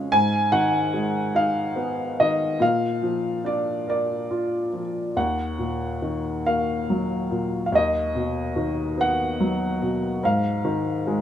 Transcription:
upright piano
Already playing: C#3 F3 G#3 C#4 F5
0.12 G#2 G#5
0.52 D#3 F#5
0.94 G#3
1.35 D#4 F5
1.76 B3
2.20 D#3 D#5
2.60 A#2 F5
3.03 F3
3.44 D4 D5
3.87 A#4 D5
4.31 F4
4.73 F3
5.16 D#2 F#5
5.58 A#2
6.02 D#3
6.46 A#3 F5
6.90 F#3
7.31 A#2
7.66 F5
7.72 D#2 D#5
8.15 B2
8.56 D#3
8.98 B3 F#5
9.40 F#3
9.82 B2
10.23 G#2 F5
10.65 D#3
11.07 G#3

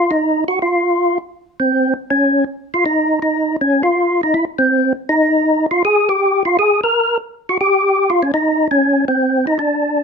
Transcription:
tonewheel organ
Already playing: F4
0.11 D#4
0.48 F#4
0.62 F4
1.60 C4
2.10 C#4
2.74 F4
2.86 D#4
3.22 D#4
3.61 C#4
3.83 F4
4.23 D#4
4.34 E4
4.58 C4
5.09 D#4
5.71 F4
5.85 G#4
6.09 G4
6.45 F4
6.59 G#4
6.84 A#4
7.49 F#4
7.61 G4
8.10 F4
8.23 C#4
8.34 D#4
8.71 C#4
9.08 C4
9.47 D#4
9.59 D4

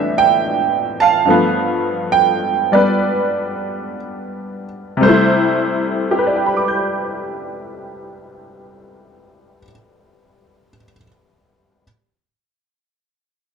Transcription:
honky-tonk piano
Already playing: D2 A2 E3 F3 G3 B3 C4 D4 E4 E5
0.18 G5
1.00 F5 A5
1.25 G2 F3 A3
1.30 B3
2.12 G5
2.72 G3 B3 B4 D5
4.97 C3 G3
5.03 A3 C5
5.09 E4
6.11 G4
6.19 B4
6.27 D5
6.36 G5
6.46 B5
6.57 D6
6.68 G6

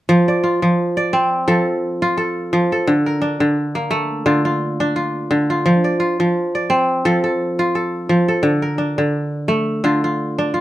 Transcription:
kora
0.09 F3
0.28 D5
0.44 F4
0.62 F3
0.97 D5
1.13 C4
1.48 F3 A4
2.02 F4
2.17 A4
2.53 F3
2.72 A4
2.87 D3
3.06 A#4
3.22 D4
3.40 D3
3.75 A#3
3.91 A3
4.26 D3 F4
4.45 F4
4.80 D4
4.96 F4
5.31 D3
5.50 F4
5.66 F3
5.84 D5
6.00 F4
6.20 F3
6.55 D5
6.70 C4
7.05 F3 A4
7.24 A4
7.59 F4
7.75 A4
8.09 F3
8.28 A4
8.43 D3
8.62 A#4
8.78 D4
8.98 D3
9.48 A3
9.84 D3 F4
10.04 F4
10.38 D4
10.54 F4

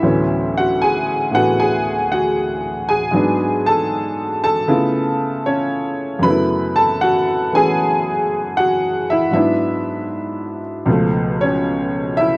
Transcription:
upright piano
Already playing: E4 E5
0.02 D2 A2 E3 F#3 B3 C#4
0.57 F#4 F#5
0.82 G#4 G#5
1.31 A2 D3 E3 A3 B3 F#5
1.36 F#4
1.60 G#4 G#5
2.12 F#4 F#5
2.89 G#4 G#5
3.11 G#2 F#3 B3
3.16 D4
3.66 A4 A5
4.44 A4 A5
4.68 C#3 A3 B3 E4 F4
5.46 C#4 C#5
6.19 F#2 C#3 B5
6.23 F#3 A3 B4
6.28 B3 E4
6.76 A4 A5
7.01 F#4 F#5
7.52 E3 A3 B3 C#4 F#4 G#4 G#5
8.57 F#4 F#5
9.10 E4 E5
9.31 G#2 F#3 B3 E5
9.35 D4 E4
10.85 C#2 B2 F3
10.90 A3
11.41 C#4 C#5
12.17 E4 E5

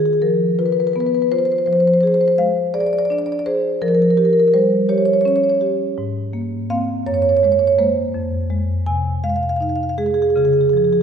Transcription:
marimba
Already playing: D#3 F4
0.00 G#4
0.06 G#4
0.13 G#4
0.22 F3 A#4
0.59 F4 B4
0.66 B4
0.72 B4
0.80 B4
0.87 B4
0.93 B3 B4
1.00 B4
1.06 B4
1.15 B4
1.22 B4
1.32 F4 C5
1.39 C5
1.45 C5
1.52 C5
1.58 C5
1.66 F3 C5
1.73 C5
1.80 C5
1.87 C5
1.94 C5
2.01 G#4 C5
2.07 C5
2.14 C5
2.21 C5
2.28 C5
2.38 G#3 F5
2.74 G#4 D5
2.80 D5
2.87 D5
2.93 D5
2.99 D5
3.05 D5
3.10 D4 D5
3.19 D5
3.26 D5
3.32 D5
3.39 D5
3.46 G#4 C5
3.82 F3 A#4
3.88 A#4
3.95 A#4
4.02 A#4
4.10 A#4
4.17 G4 A#4
4.25 A#4
4.33 A#4
4.40 A#4
4.48 A#4
4.54 G3 C5
4.89 G4 C#5
4.98 C#5
5.05 C#5
5.13 C#5
5.21 C#5
5.25 C#4 C#5
5.36 C#5
5.44 C#5
5.50 C#5
5.61 G4
5.98 G#2
6.33 A#3
6.70 A#3 C4 F5
7.07 F#2 C#5
7.14 C#5
7.22 C#5
7.29 C#5
7.37 C#5
7.43 G#3 C#5
7.52 C#5
7.59 C#5
7.67 C#5
7.79 G#3 A#3 C5
8.14 F2
8.50 G#3
8.86 C3 G#5
9.24 G#3 F5
9.29 F5
9.36 F5
9.43 F5
9.49 F5
9.56 F5
9.60 D#4 F5
9.69 F5
9.76 F5
9.83 F5
9.89 F5
9.98 G#3 G#4
10.06 G#4
10.14 G#4
10.22 G#4
10.30 G#4
10.36 C#3 G#4
10.45 G#4
10.53 G#4
10.61 G#4
10.70 F3 G#4
10.77 G#4
10.84 G#4
10.93 G#4

